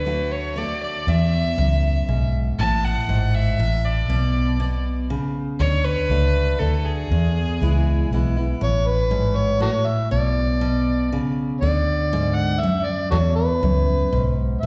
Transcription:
0.00 0.63 D2 medium
0.00 0.33 B4 medium
0.05 0.54 D3 medium
0.05 0.54 A3 medium
0.05 0.54 D4 medium
0.05 0.55 F#4 medium
0.32 0.58 C#5 medium
0.56 1.04 D3 medium
0.56 1.05 A3 medium
0.56 1.05 D4 medium
0.56 1.05 F#4 medium
0.56 0.81 D5 medium
0.82 1.09 D5 medium
1.07 1.43 E2 medium
1.07 1.58 E2 medium
1.07 2.33 E5 loud
1.58 2.00 C#2 medium
1.58 2.06 F#2 medium
2.08 2.51 B1 medium
2.08 2.56 G#2 medium
2.59 2.94 A1 medium
2.59 3.54 A2 medium
2.59 2.86 A5 loud
2.85 3.36 F#5 medium
3.09 3.51 G#1 medium
3.09 3.56 G#2 medium
3.35 3.86 E5 medium
3.59 4.01 A1 medium
3.59 4.07 A2 medium
3.85 4.85 D5 medium
4.08 5.15 B1 medium
4.08 4.59 B2 medium
4.60 5.07 B2 medium
5.10 5.58 C#3 medium
5.59 5.95 D2 medium
5.59 6.55 D3 medium
5.59 5.85 C#5 loud
5.84 6.60 B4 loud
6.09 6.52 C#2 medium
6.09 6.58 A3 medium
6.09 6.58 D4 medium
6.09 6.59 F#4 medium
6.59 7.03 D2 medium
6.59 7.08 D3 medium
6.59 7.08 A3 medium
6.59 7.08 D4 medium
6.59 7.09 F#4 medium
6.59 6.87 A4 medium
6.85 8.11 G#4 medium
7.11 7.46 E2 medium
7.11 8.06 E2 medium
7.60 8.04 C#2 medium
7.60 8.08 E3 medium
7.60 8.09 G#3 medium
7.60 8.09 B3 medium
7.60 8.09 E4 medium
8.11 8.54 B1 medium
8.11 8.36 E3 medium
8.11 8.36 G#3 medium
8.11 8.36 B3 medium
8.11 8.36 E4 medium
8.37 8.61 B3 soft
8.37 8.61 E4 medium
8.61 9.68 A1 medium
8.61 9.56 A2 medium
8.61 8.89 C#5 medium
8.87 9.38 B4 medium
9.11 9.59 G#2 medium
9.36 9.61 C#5 medium
9.60 10.09 A2 medium
9.60 9.70 F#4 medium
9.60 9.69 A4 medium
9.60 9.88 C#5 medium
9.86 10.11 E5 loud
10.11 11.18 B1 medium
10.11 10.60 B2 medium
10.11 11.33 D5 medium
10.61 11.09 B2 medium
11.12 11.60 C#3 medium
11.61 12.68 D2 medium
11.61 12.58 D3 medium
11.61 12.36 D5 medium
12.13 12.60 G#2 medium
12.35 12.62 F#5 medium
12.60 13.10 F#2 medium
12.60 12.87 E5 loud
12.86 13.10 D5 medium
13.11 13.47 E2 medium
13.11 13.62 E2 medium
13.11 13.18 F#4 medium
13.11 13.17 A4 medium
13.11 13.35 C#5 medium
13.36 14.33 B4 medium
13.62 14.05 C#2 medium
13.62 14.10 F#2 medium
14.13 14.55 B1 medium
14.13 14.60 G#2 medium
14.61 14.66 A1 medium
14.61 14.66 A2 medium
14.61 14.66 E5 medium

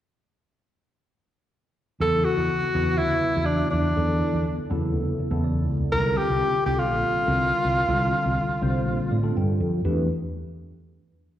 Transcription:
2.00 2.23 E2 medium
2.00 2.68 C#3 medium
2.00 2.68 F#3 medium
2.00 2.68 B3 medium
2.00 2.68 E4 medium
2.00 2.69 A4 medium
2.00 2.26 A4 medium
2.25 2.99 F#4 medium
2.37 2.49 E2 medium
2.63 muted fretless electric bass stroke soft
2.73 3.00 E2 medium
2.73 3.30 C#3 medium
2.73 3.30 F#3 medium
2.73 3.31 B3 medium
2.73 3.31 E4 medium
2.73 3.31 B4 medium
2.97 3.11 D2 medium
2.97 3.47 E4 medium
3.24 muted fretless electric bass stroke soft
3.35 3.59 E2 medium
3.35 3.92 C#3 medium
3.35 3.92 F#3 medium
3.35 3.92 B3 medium
3.35 3.92 E4 medium
3.35 3.92 F#4 medium
3.45 3.70 D4 medium
3.70 3.96 E2 medium
3.70 4.66 D4 medium
3.95 4.21 E2 medium
3.95 4.64 D3 medium
3.95 4.64 F#3 medium
3.95 4.64 B3 medium
3.95 4.64 E4 medium
3.95 4.64 A4 medium
4.33 4.45 E2 medium
4.58 muted fretless electric bass stroke soft
4.70 4.94 E2 medium
4.70 5.27 C#3 medium
4.70 5.27 F#3 medium
4.70 5.27 B3 medium
4.70 5.27 E4 medium
4.70 5.27 A4 medium
4.94 5.06 D2 medium
5.20 muted fretless electric bass stroke soft
5.30 5.69 E2 medium
5.30 5.88 C#3 medium
5.30 5.88 F#3 medium
5.30 5.88 B3 medium
5.30 5.88 E4 medium
5.30 5.88 A4 medium
5.44 5.90 D5 medium
5.69 5.92 C#2 medium
5.92 6.16 C2 medium
5.92 6.61 D3 medium
5.92 6.61 G3 medium
5.92 6.61 C4 medium
5.92 6.61 F4 medium
5.92 6.61 A4 medium
5.92 6.19 A#4 medium
6.17 6.65 G4 medium
6.30 6.42 C2 medium
6.53 muted fretless electric bass stroke soft
6.66 6.91 C2 medium
6.66 7.23 D3 medium
6.66 7.23 G3 medium
6.66 7.23 C4 medium
6.66 7.23 F4 medium
6.66 6.80 G4 medium
6.66 7.23 A4 medium
6.79 9.35 F4 medium
6.91 7.03 A#1 medium
7.15 muted fretless electric bass stroke soft
7.26 7.51 C2 medium
7.26 7.83 D3 medium
7.26 7.83 G3 medium
7.26 7.84 C4 medium
7.26 7.84 F4 medium
7.26 7.84 A#4 medium
7.65 7.88 C2 medium
7.88 8.12 C2 medium
7.88 8.56 D3 medium
7.88 8.56 G3 medium
7.88 8.56 C4 medium
7.88 8.56 F4 medium
7.88 8.56 A4 loud
8.26 8.37 C2 medium
8.49 muted fretless electric bass stroke soft
8.61 8.87 C2 medium
8.61 9.18 D3 medium
8.61 9.18 G3 medium
8.61 9.18 C4 medium
8.61 9.18 F4 medium
8.61 9.18 C5 loud
8.87 8.98 A#1 medium
9.11 9.33 A2 medium
9.11 9.34 D5 medium
9.23 9.79 D3 medium
9.23 9.79 G3 medium
9.23 9.79 C4 medium
9.23 9.79 F4 medium
9.23 9.79 A4 medium
9.37 9.58 G2 medium
9.37 9.81 G5 medium
9.60 9.82 F2 medium
9.85 10.07 E2 medium
9.85 10.07 E3 medium
9.85 10.07 A3 medium
9.85 10.07 D4 medium
9.85 10.07 G4 medium
9.85 10.07 B4 medium

